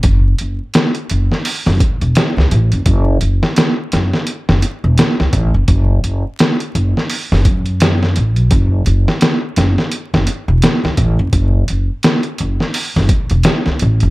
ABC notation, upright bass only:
X:1
M:4/4
L:1/16
Q:"Swing 16ths" 1/4=85
K:F#m
V:1 name="Upright bass" clef=bass
F,,,2 F,,, z3 F,,, z2 F,,, z E,,, z C,, A,,, F,,, | F,,,2 F,,, z3 F,,, z2 F,,, z E,,, z C,, A,,, F,,, | F,,,2 F,,, z3 F,,, z2 F,,, F,,4 A,,, B,,, | F,,,2 F,,, z3 F,,, z2 F,,, z E,,, z C,, A,,, F,,, |
F,,,2 F,,, z3 F,,, z2 F,,, z E,,, z C,, A,,, F,,, |]